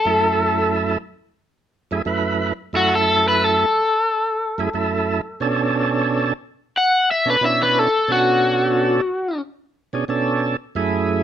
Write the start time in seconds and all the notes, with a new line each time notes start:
Already playing: A4
0.05 F#2 A3 E4 A4
1.91 F#2 A3 E4 G#4
2.05 F#2 A3 E4 B4
2.73 F#2 A3 E4 F#4 A4
2.95 A4
3.28 B4
3.44 A4
4.58 F#2 A3 E4 G#4
4.74 F#2 A3 E4 A4
5.40 B2 C#4 D4 A4
6.78 F#5
7.11 E5
7.25 B2 C#4 D4 A4
7.30 B4
7.41 B2 C#4 D4 E4
7.45 E5
7.63 B4
7.79 A4
8.08 B2 C#4 D4 F#4 A4
9.93 B2 C#4 D4 G#4
10.08 B2 C#4 D4 A4
10.75 F#2 A3 E4 G#4